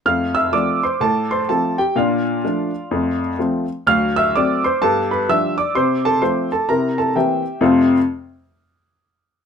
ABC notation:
X:1
M:4/4
L:1/8
Q:"Swing" 1/4=127
K:F
V:1 name="Upright piano"
[ff'] [ee'] [dd'] [cc'] [Aa] [cc'] [Aa] [Gg] | [Fdf]6- [Fdf] z | [ff'] [ee'] [dd'] [cc'] [Aa] [=B=b] [ee'] [dd'] | [cc'] [Aa] [cc'] [Aa] [Bb] [Aa] [Geg]2 |
[F,,C,A,CFAf] z6 z |]
V:2 name="Upright piano"
[F,,A,]2 [F,A,C]2 A,,2 [F,A,C]2 | [B,,D]2 [F,A,D]2 [F,,A,]2 [F,A,C]2 | [D,,^F,]2 [F,A,C]2 [G,,=B,]2 [=F,G,D]2 | C,2 [F,A,C]2 [C,E]2 [E,B,C]2 |
z8 |]